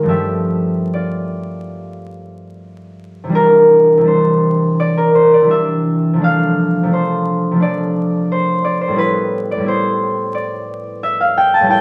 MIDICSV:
0, 0, Header, 1, 2, 480
1, 0, Start_track
1, 0, Key_signature, 0, "major"
1, 0, Tempo, 823045
1, 49, Time_signature, 4, 2, 24, 8
1, 1485, Tempo, 784314
1, 1965, Tempo, 731707
1, 2925, Tempo, 705882
1, 5325, Tempo, 676437
1, 7798, End_track
2, 0, Start_track
2, 0, Title_t, "Harp"
2, 0, Program_c, 0, 46
2, 0, Note_on_c, 0, 44, 73
2, 0, Note_on_c, 0, 51, 44
2, 0, Note_on_c, 0, 56, 51
2, 0, Note_on_c, 0, 58, 47
2, 0, Note_on_c, 0, 63, 59
2, 0, Note_on_c, 0, 65, 67
2, 0, Note_on_c, 0, 66, 67
2, 0, Note_on_c, 0, 70, 93
2, 0, Note_on_c, 0, 78, 116
2, 18, Note_on_c, 0, 43, 68
2, 29, Note_on_c, 0, 53, 50
2, 38, Note_on_c, 0, 57, 51
2, 40, Note_on_c, 0, 60, 49
2, 51, Note_on_c, 0, 76, 99
2, 56, Note_on_c, 0, 67, 73
2, 66, Note_off_c, 0, 66, 0
2, 67, Note_off_c, 0, 78, 0
2, 68, Note_off_c, 0, 44, 0
2, 68, Note_off_c, 0, 58, 0
2, 69, Note_off_c, 0, 70, 0
2, 72, Note_off_c, 0, 63, 0
2, 76, Note_off_c, 0, 51, 0
2, 76, Note_off_c, 0, 56, 0
2, 546, Note_on_c, 0, 74, 71
2, 547, Note_off_c, 0, 65, 0
2, 554, Note_on_c, 0, 65, 44
2, 869, Note_off_c, 0, 76, 0
2, 1908, Note_on_c, 0, 48, 68
2, 1929, Note_on_c, 0, 52, 57
2, 1941, Note_on_c, 0, 55, 55
2, 1956, Note_on_c, 0, 62, 56
2, 1967, Note_off_c, 0, 43, 0
2, 1974, Note_off_c, 0, 53, 0
2, 1978, Note_on_c, 0, 70, 113
2, 1979, Note_off_c, 0, 57, 0
2, 1994, Note_off_c, 0, 65, 0
2, 2379, Note_off_c, 0, 48, 0
2, 2383, Note_off_c, 0, 60, 0
2, 2386, Note_on_c, 0, 48, 64
2, 2393, Note_off_c, 0, 52, 0
2, 2401, Note_off_c, 0, 67, 0
2, 2401, Note_on_c, 0, 52, 50
2, 2415, Note_off_c, 0, 55, 0
2, 2423, Note_on_c, 0, 55, 51
2, 2429, Note_off_c, 0, 62, 0
2, 2437, Note_on_c, 0, 62, 46
2, 2453, Note_on_c, 0, 72, 86
2, 2789, Note_off_c, 0, 70, 0
2, 2919, Note_off_c, 0, 74, 0
2, 2926, Note_on_c, 0, 74, 108
2, 3047, Note_on_c, 0, 70, 92
2, 3159, Note_off_c, 0, 72, 0
2, 3167, Note_on_c, 0, 72, 99
2, 3255, Note_off_c, 0, 70, 0
2, 3286, Note_off_c, 0, 74, 0
2, 3294, Note_on_c, 0, 74, 92
2, 3331, Note_off_c, 0, 48, 0
2, 3339, Note_on_c, 0, 48, 59
2, 3348, Note_off_c, 0, 52, 0
2, 3356, Note_on_c, 0, 52, 50
2, 3366, Note_off_c, 0, 55, 0
2, 3374, Note_on_c, 0, 55, 51
2, 3375, Note_off_c, 0, 72, 0
2, 3384, Note_off_c, 0, 62, 0
2, 3392, Note_on_c, 0, 62, 58
2, 3410, Note_on_c, 0, 76, 104
2, 3499, Note_off_c, 0, 74, 0
2, 3827, Note_off_c, 0, 48, 0
2, 3836, Note_on_c, 0, 48, 66
2, 3854, Note_on_c, 0, 53, 55
2, 3872, Note_on_c, 0, 57, 59
2, 3881, Note_off_c, 0, 62, 0
2, 3889, Note_on_c, 0, 62, 60
2, 3890, Note_off_c, 0, 52, 0
2, 3899, Note_off_c, 0, 55, 0
2, 3908, Note_on_c, 0, 77, 109
2, 3917, Note_off_c, 0, 76, 0
2, 4302, Note_off_c, 0, 48, 0
2, 4310, Note_on_c, 0, 48, 60
2, 4318, Note_off_c, 0, 53, 0
2, 4326, Note_on_c, 0, 53, 48
2, 4334, Note_off_c, 0, 57, 0
2, 4342, Note_on_c, 0, 57, 53
2, 4356, Note_off_c, 0, 62, 0
2, 4364, Note_on_c, 0, 62, 52
2, 4380, Note_on_c, 0, 72, 92
2, 4766, Note_off_c, 0, 48, 0
2, 4774, Note_on_c, 0, 48, 59
2, 4785, Note_off_c, 0, 53, 0
2, 4793, Note_on_c, 0, 53, 54
2, 4801, Note_off_c, 0, 57, 0
2, 4810, Note_on_c, 0, 57, 53
2, 4825, Note_off_c, 0, 62, 0
2, 4833, Note_on_c, 0, 62, 53
2, 4848, Note_on_c, 0, 74, 101
2, 5312, Note_off_c, 0, 72, 0
2, 5320, Note_on_c, 0, 72, 103
2, 5544, Note_off_c, 0, 74, 0
2, 5552, Note_on_c, 0, 74, 96
2, 5663, Note_off_c, 0, 72, 0
2, 5671, Note_on_c, 0, 72, 101
2, 5720, Note_on_c, 0, 45, 67
2, 5739, Note_on_c, 0, 55, 62
2, 5756, Note_on_c, 0, 59, 60
2, 5760, Note_off_c, 0, 74, 0
2, 5776, Note_on_c, 0, 64, 62
2, 5783, Note_off_c, 0, 48, 0
2, 5792, Note_off_c, 0, 53, 0
2, 5793, Note_on_c, 0, 71, 115
2, 5813, Note_off_c, 0, 62, 0
2, 5827, Note_off_c, 0, 77, 0
2, 5880, Note_off_c, 0, 72, 0
2, 6169, Note_on_c, 0, 74, 91
2, 6204, Note_off_c, 0, 45, 0
2, 6212, Note_on_c, 0, 45, 66
2, 6221, Note_off_c, 0, 55, 0
2, 6229, Note_on_c, 0, 55, 56
2, 6244, Note_off_c, 0, 59, 0
2, 6252, Note_on_c, 0, 59, 51
2, 6262, Note_off_c, 0, 64, 0
2, 6270, Note_on_c, 0, 64, 55
2, 6288, Note_on_c, 0, 72, 98
2, 6377, Note_off_c, 0, 74, 0
2, 6759, Note_on_c, 0, 74, 95
2, 7247, Note_on_c, 0, 76, 113
2, 7370, Note_on_c, 0, 77, 100
2, 7490, Note_on_c, 0, 79, 111
2, 7555, Note_off_c, 0, 57, 0
2, 7574, Note_off_c, 0, 77, 0
2, 7579, Note_off_c, 0, 74, 0
2, 7606, Note_on_c, 0, 81, 101
2, 7642, Note_off_c, 0, 45, 0
2, 7651, Note_on_c, 0, 45, 73
2, 7660, Note_off_c, 0, 55, 0
2, 7669, Note_on_c, 0, 55, 64
2, 7681, Note_off_c, 0, 59, 0
2, 7690, Note_on_c, 0, 59, 65
2, 7694, Note_off_c, 0, 79, 0
2, 7701, Note_off_c, 0, 64, 0
2, 7709, Note_on_c, 0, 64, 61
2, 7723, Note_on_c, 0, 79, 127
2, 7798, Note_off_c, 0, 45, 0
2, 7798, Note_off_c, 0, 55, 0
2, 7798, Note_off_c, 0, 59, 0
2, 7798, Note_off_c, 0, 64, 0
2, 7798, Note_off_c, 0, 71, 0
2, 7798, Note_off_c, 0, 72, 0
2, 7798, Note_off_c, 0, 76, 0
2, 7798, Note_off_c, 0, 79, 0
2, 7798, Note_off_c, 0, 81, 0
2, 7798, End_track
0, 0, End_of_file